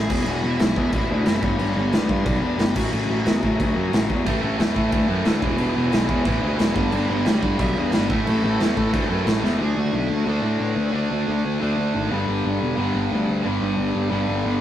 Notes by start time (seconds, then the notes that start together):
Already playing: G#4 G#5
0.09 E1 E2 B2 E3, kick, crash
0.26 E1 E2 B2 E3 F#4, crash
0.30 F#5
0.43 E1 E2 B2 E3
0.47 E4 E5
0.58 B1 E2 B2 E3, snare, crash
0.76 E2 B2 E3, kick
0.92 A1 E2 B2 E3, kick, crash
1.10 D2 E2 B2 E3
1.26 F#1 E2 B2 E3, snare, crash
1.41 G1 G2 D3 G3 C#4 C#5, kick
1.57 G1 G2 D3 G3, crash
1.73 G1 G2 D3 G3
1.91 D2 G2 D3 G3 B4, snare, crash
1.95 B3
2.08 G2 D3 G3, kick
2.24 B1 G2 D3 G3 D4 D5, kick, crash
2.40 E2 G2 D3 G3
2.58 G1 G2 D3 G3 G4 G5, snare, crash
2.75 A1 F#2 C#3 F#3 F#4 F#5, kick, crash
2.91 A1 F#2 C#3 F#3, crash
3.08 A1 F#2 C#3 F#3
3.24 E2 F#2 C#3 F#3, snare, crash
3.41 F#2 A2 C#3 F#3, kick
3.59 D2 F#2 C#3 F#3, kick, crash
3.75 F#2 C#3 F#3
3.92 A1 F#2 C#3 F#3, snare, crash
4.09 E2 F#2 C#3 F#3, kick
4.26 A1 A2 E3 A3, kick, crash
4.41 A1 A2 E3 A3
4.58 E2 A2 E3 A3, snare, crash
4.74 A2 E3 A3, kick
4.91 D2 A2 E3 A3, kick, crash
5.08 F#2 A2 E3 A3
5.24 D2 A2 E3 A3, snare, crash
5.40 E1 E2 B2 E3, kick
5.57 E1 E2 B2 E3, crash
5.74 E1 E2 B2 E3
5.90 B1 E2 B2 E3, snare, crash
6.07 E2 B2 E3, kick
6.24 A1 E2 B2 E3, kick, crash
6.40 D2 E2 B2 E3
6.57 E1 E2 B2 E3, snare, crash
6.74 G1 G2 D3 G3, kick
6.78 D4 D5
6.91 G1 G2 D3 G3, crash
7.08 G1 G2 D3 G3
7.25 D2 G2 D3 G3 C#4 C#5, snare, crash
7.41 G2 D3 G3 D4 D5, kick
7.58 B1 G2 D3 G3 E4 E5, kick, crash
7.75 E2 G2 D3 G3 D4 D5
7.92 G1 G2 D3 G3, snare, crash
8.09 A1 A2 E3 A3 E4 E5, kick
8.25 A1 A2 E3 A3 A4 A5, crash
8.42 A1 A2 E3 A3
8.59 E2 A2 E3 A3, snare, crash
8.76 A2 E3 A3, kick
8.93 D2 A2 E3 A3, kick, crash
9.10 F#2 A2 E3 A3
9.26 A1 A2 E3 A3, snare, crash
9.42 E2 A2 E3 A3, snare
9.58 D2 D3 A3
9.62 D4 G#4 G#5
9.76 D2 F#4
9.80 F#5
9.93 B1 E4 E5
10.09 D2 F#4 F#5
10.24 D2 D3 A3 D4
10.29 A4 A5
10.42 A2 D4
10.46 D5
10.60 A2 B3 B4
10.76 D2
10.88 C#4 C#5
10.92 D2 D3 A3 D4 D5
10.96 D4
11.11 D2
11.28 D2
11.45 D2
11.59 D2 D3 A3
11.63 D4
11.77 D2
11.95 G#1
12.08 G1 G2 D3 G3
12.27 G1
12.45 G1
12.62 E1
12.76 G1 D3 G3
12.80 G2
12.94 G1
13.11 D2
13.29 D2
13.43 G1 G2 D3 G3
13.61 G1
13.78 G1
13.95 G1
14.10 G1 G2 D3 G3
14.29 G1
14.45 G1